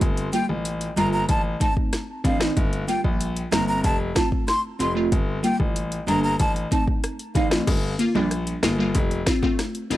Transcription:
0.01 G1, kick, closed hi-hat
0.17 closed hi-hat
0.33 G3 A#3 F4 G5, closed hi-hat
0.49 A1
0.65 closed hi-hat
0.81 closed hi-hat
0.96 G1 G3 A#3 F4 A#5, closed hi-hat
1.13 A#5
1.29 A1 A5, kick, closed hi-hat
1.60 A3 C4 D#4 A5, kick, closed hi-hat
1.77 kick
1.93 cross-stick, snare, closed hi-hat
2.24 A1 C4 D4 F5, kick, closed hi-hat
2.40 A3 C4 D#4, cross-stick, snare
2.57 G1, kick, closed hi-hat
2.73 closed hi-hat
2.88 G3 A#3 F4 G5, closed hi-hat
3.04 A#1, kick
3.21 closed hi-hat
3.37 closed hi-hat
3.52 G1 G3 A#3 C4 A#5, cross-stick, snare, closed hi-hat
3.68 A#5
3.84 F1 A5, kick, closed hi-hat
4.15 A3 C4 F4 A5, kick, cross-stick, snare, closed hi-hat
4.32 kick
4.48 C6, cross-stick, snare, closed hi-hat
4.79 F1 C4 F4 C6, closed hi-hat
4.95 A3 C4 F4
5.12 G1, kick, closed hi-hat
5.43 G3 A#3 F4 G5, closed hi-hat
5.60 A1, kick
5.76 closed hi-hat
5.92 closed hi-hat
6.07 G1 G3 A#3 D4 A#5, closed hi-hat
6.24 A#5
6.40 A1 A5, kick, closed hi-hat
6.56 closed hi-hat
6.71 A3 C4 D#4 A5, kick, closed hi-hat
6.88 kick
7.04 cross-stick, closed hi-hat
7.19 closed hi-hat
7.35 A1 C4 D#4 F5, kick, closed hi-hat
7.51 A3 C4 F4, cross-stick, snare
7.67 G1, kick, closed hi-hat, crash, high bongo
7.99 A#3 F4, closed hi-hat
8.15 A#1 G3 A#3 D4, high bongo
8.31 cross-stick, closed hi-hat
8.47 closed hi-hat
8.63 G1 A#3 F4, cross-stick, snare, closed hi-hat, high bongo
8.78 G3 A#3 F4
8.95 F1, kick, closed hi-hat, high bongo
9.11 closed hi-hat
9.26 C4 F4, kick, cross-stick, snare, closed hi-hat
9.42 A3 C4 F4, kick, high bongo
9.59 cross-stick, snare, closed hi-hat
9.75 closed hi-hat
9.90 F1 C4 F4, closed hi-hat, low bongo

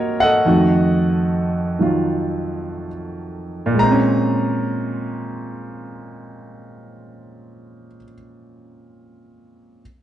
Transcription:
Already playing: C3 F#3 A#3 D#4 F#4 A#4 C5 C#5 D#5
0.20 A4 D#5 F#5
0.45 F2 D#3 A3 F#4
1.79 D#3 F#3 F4
3.66 A#2
3.75 G#3
3.79 C4 A#5
3.92 C#4

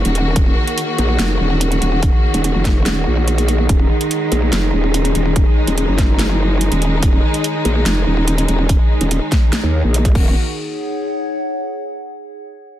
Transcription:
Already playing: D#3 A#3 D#4 F#4 G#4 C#5 F#5
0.05 D#1, closed hi-hat
0.15 closed hi-hat
0.36 D#1, kick, closed hi-hat
0.68 closed hi-hat
0.78 closed hi-hat
0.98 A#1, closed hi-hat
1.19 F1, snare, closed hi-hat
1.40 D#1
1.61 closed hi-hat
1.72 closed hi-hat
1.82 D#1, closed hi-hat
2.03 kick, closed hi-hat
2.34 D#1, closed hi-hat
2.44 closed hi-hat
2.55 F1
2.65 kick, snare, closed hi-hat
2.86 D#1, snare, closed hi-hat
3.07 A#1
3.28 closed hi-hat
3.38 closed hi-hat
3.48 closed hi-hat
3.69 D#1 G#3 D#4, kick, closed hi-hat
4.01 closed hi-hat
4.11 closed hi-hat
4.29 A#1 G#5, closed hi-hat
4.53 F1, snare, closed hi-hat
4.73 D#1
4.94 closed hi-hat
5.05 closed hi-hat
5.15 D#1, closed hi-hat
5.36 kick, closed hi-hat
5.67 D#1, closed hi-hat
5.78 closed hi-hat
5.88 F#1
5.98 kick, snare, closed hi-hat
6.19 snare, closed hi-hat
6.61 closed hi-hat
6.72 D#1, closed hi-hat
6.82 closed hi-hat
7.03 D#1, kick, closed hi-hat
7.34 closed hi-hat
7.44 closed hi-hat
7.65 A#1, closed hi-hat
7.86 F1, snare, closed hi-hat
8.07 D#1
8.28 closed hi-hat
8.38 closed hi-hat
8.48 D#1, closed hi-hat
8.69 kick, closed hi-hat
9.01 D#1, closed hi-hat
9.11 closed hi-hat
9.32 kick, snare, closed hi-hat
9.53 snare, closed hi-hat
9.63 D#2
9.84 A#1
9.94 closed hi-hat
10.05 kick, closed hi-hat
10.15 D#1 D#3 A#3 D#4 F#4, kick, crash
10.22 G#4
10.49 C#5
10.55 F#5

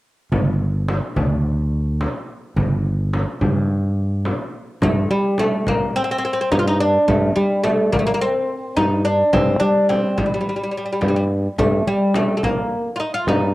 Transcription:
0.32 G1, darbuka dum, frame drum
0.88 darbuka tek, frame drum
1.16 D2, frame drum, darbuka dum
2.01 darbuka tek, frame drum
2.56 G1, frame drum, darbuka dum
3.13 darbuka tek, frame drum
3.41 G2, frame drum, darbuka dum
4.25 darbuka tek, frame drum
4.82 G2 A3, frame drum
5.10 G3
5.38 A3, frame drum
5.67 A#3, frame drum
5.96 C4
6.04 C4
6.11 C4
6.18 C4
6.25 C4
6.33 C4
6.41 C4
6.52 G2 D#4, frame drum
6.59 F4
6.67 D#4
6.80 D4
7.08 G2 A3, frame drum
7.36 G3
7.63 A3, frame drum
7.92 A#3, frame drum
7.99 A3
8.07 A#3
8.14 A#3
8.21 C4
8.77 G2 D#4, frame drum
9.05 D4
9.33 G2 C4, frame drum
9.60 G3 D4
9.89 C4, frame drum
10.18 G3, frame drum
10.26 G3
10.34 G3
10.41 G3
10.49 G3
10.56 G3
10.64 G3
10.71 G3
10.77 G3
10.86 G3
10.93 G3
11.01 G2 G3, frame drum
11.08 G3
11.16 G3
11.58 G2 A3, frame drum
11.87 G3
12.14 A3, frame drum
12.37 A3
12.43 A#3, frame drum
12.96 D#4 F4
13.14 F4
13.27 G2 D#4, frame drum

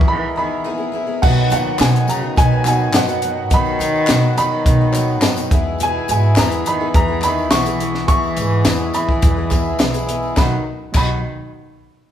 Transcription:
Already playing: E2 B2 E3 G#3 B3 E4 G#4 A#4 E5 F#5
0.01 kick
0.08 E3 B3 E4 G#4 E5 B5
0.36 D#3 E3 B3 E4 G#4 B5
0.64 E3 B3 E4 G#4 E5
0.78 B3 E4 G#4
0.92 E3 B3 E4 G#4
0.96 E5
1.07 B3 E4 G#4
1.22 B1 B2 D#3 F#3 B3 D#4 F#4 B4 D#5 F#5, kick, crash, tambourine
1.36 tambourine
1.50 A#2 D#3 F#3 B3 D#4 F#4 B4 D#5 F#5, closed hi-hat, tambourine
1.64 tambourine
1.78 B2 F#3 B3 D#4 F#4 B4 D#5 G#5, snare, clap, closed hi-hat, tambourine
1.96 closed hi-hat
2.06 C#3 F#3 B3 D#4 B4 D#5 A#5, closed hi-hat, tambourine
2.10 F#4
2.21 B3 D#4 F#4
2.35 B2 F#3 B3 D#4 B4 D#5 G#5, kick, closed hi-hat, tambourine
2.51 B3 D#4 F#4
2.64 B2 F#3 B3 D#4 F#4 B4 F#5 G#5, clap, closed hi-hat, tambourine
2.79 tambourine
2.92 F#2 B2 F#3 B3 D#4 F#4 D#5 F#5, snare, clap, closed hi-hat, tambourine
3.08 B3 D#4 F#4, closed hi-hat, tambourine
3.22 F#3 B3 D#4 F#4 B4 D#5, closed hi-hat
3.50 B1 B2 D#3 F#3 B3 D#4 F#4 B4 D#5 B5, kick, closed hi-hat, tambourine
3.65 tambourine
3.79 D#3 F#3 B3 D#4 F#4 B4 D#5, closed hi-hat, tambourine
3.95 tambourine
4.07 B2 F#3 B3 D#4 F#4 B4 D#5, snare, clap, closed hi-hat, tambourine
4.23 tambourine
4.35 D#3 F#3 B3 D#4 F#4 B4 C#5 B5, closed hi-hat, tambourine
4.51 B3 D#4 F#4
4.64 B2 F#3 B3 D#4 B4 D#5, kick, closed hi-hat, tambourine
4.81 B3 D#4 F#4
4.91 F#3 B3 D#4 B4 C#5, clap, closed hi-hat, tambourine
4.95 B3 D#4 F#4
5.08 tambourine
5.20 F#2 B2 F#3 B3 D#4 B4 D#5, snare, clap, closed hi-hat, tambourine
5.25 F#4
5.37 B3 D#4 F#4, closed hi-hat, tambourine
5.50 E2 E3 G#3 B3 E4 G#4 B4 E5, kick, closed hi-hat
5.54 G#4
5.79 B2 E3 B3 E4 G#4, closed hi-hat, tambourine
5.83 G#5
6.07 G#2 E3 G#3 B3 E4 G#4 B4 E5 G#5, closed hi-hat, tambourine
6.12 B2
6.23 tambourine
6.36 E2 E3 G#3 B3 E4 G#4 B4 D#5 A#5, snare, clap, closed hi-hat, tambourine
6.52 closed hi-hat
6.65 D#3 E3 G#3 B3 E4 G#4 B4 E5 B5, closed hi-hat
6.80 B3 E4 G#4
6.94 E2 E3 G#3 B3 E4 B4 A#5, kick, closed hi-hat, tambourine
7.08 B3 E4 G#4
7.21 D#3 E3 G#3 B3 E4 G#4 B4 B5, clap, closed hi-hat, tambourine
7.26 E5
7.38 tambourine
7.50 B1 E3 G#3 B3 E4 G#4 B4 F#5 C#6, snare, clap, closed hi-hat, tambourine
7.65 B3 E4 G#4, closed hi-hat, tambourine
7.80 E2 E3 G#3 B3 E4 G#4 B4 E5, closed hi-hat
7.95 snare
8.08 E2 E3 G#3 B3 E4 G#4 B4 E5 C#6, kick, closed hi-hat, tambourine
8.24 tambourine
8.36 G#2 E3 G#3 B3 E4 B4 E5, closed hi-hat, tambourine
8.40 G#4
8.65 E2 E3 G#3 B3 E4 G#4 B4 E5, snare, clap, closed hi-hat, tambourine
8.80 tambourine
8.92 E3 G#3 B3 E4 B4 E5 B5, closed hi-hat, tambourine
8.97 E4 G#4
9.09 B3 E4 G#4, kick
9.21 E2 G#3 B3 E4 B4, kick, closed hi-hat, tambourine
9.37 B3 E4 G#4
9.50 E3 G#3 B3 E4 B4 E5, kick, clap, closed hi-hat, tambourine
9.54 G#4
9.65 tambourine
9.79 B1 E3 G#3 B3 E4 G#4 B4 E5, snare, clap, closed hi-hat, tambourine
9.94 B3 E4 G#4, closed hi-hat, tambourine
10.06 E3 G#3 B3 E4 B4 E5, closed hi-hat
10.10 B3 E4 G#4
10.23 tambourine
10.35 B1 B2 D#3 F#3 D#4 B4 D#5 B5, kick, snare, clap, tambourine
10.39 B2 D#3 F#3 B3 D#4 F#4
10.92 B1 B2 D#3 F#3 B3 D#4 B4 D#5, kick, clap, crash, tambourine
10.97 F#4 B5

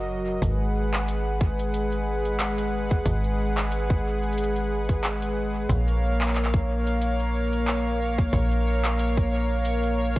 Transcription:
Already playing: F#1 F#3 F#4 A#4 D#5
0.42 G#1 G#3 G#4 B4 F#5, kick, closed hi-hat
0.93 clap
1.08 closed hi-hat
1.41 kick
1.59 closed hi-hat
1.74 closed hi-hat
1.92 closed hi-hat
2.25 closed hi-hat
2.40 clap, closed hi-hat
2.58 closed hi-hat
2.91 kick
3.06 G#1, kick, closed hi-hat
3.24 closed hi-hat
3.57 clap
3.72 closed hi-hat
3.90 kick
4.23 closed hi-hat
4.33 closed hi-hat
4.38 closed hi-hat
4.44 closed hi-hat
4.56 closed hi-hat
4.89 kick, closed hi-hat
5.04 clap, closed hi-hat
5.22 closed hi-hat
5.69 A#1 A#3 A#4 C#5 F5, kick, closed hi-hat
5.88 closed hi-hat
6.21 clap
6.28 clap
6.35 clap, closed hi-hat
6.45 clap
6.54 kick
6.87 closed hi-hat
7.01 closed hi-hat
7.20 closed hi-hat
7.53 closed hi-hat
7.67 clap, closed hi-hat
8.19 kick
8.33 A#1, kick, closed hi-hat
8.52 closed hi-hat
8.85 clap
8.99 closed hi-hat
9.17 kick
9.65 closed hi-hat
9.83 closed hi-hat

